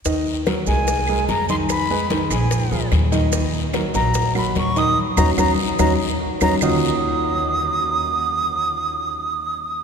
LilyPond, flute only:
\new Staff \with { instrumentName = "Flute" } { \time 4/4 \key ees \minor \tempo 4 = 146 r4. aes''4. bes''8 c'''8 | ces'''4 r8 aes''4. r4 | r4. bes''4 ces'''8 des'''8 ees'''8 | r8 bes''8 bes''8 r8 bes''8 r4 bes''8 |
ees'''1~ | ees'''1 | }